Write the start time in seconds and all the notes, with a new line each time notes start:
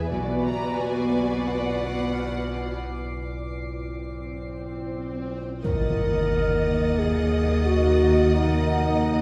Already playing: E2 B4 E5 G#5
0.10 B1 B2 B3 F#4 B4 D5 F#5 D6
0.45 A#5
0.78 G#5 C7
1.44 F#5
2.13 F6
2.83 swell
5.63 D#2 A#3 A#4 D#5 F#5 D#6 A6, impact
6.33 F6
6.99 G#4
7.66 F#4
8.33 D#4 F#5
8.90 A#6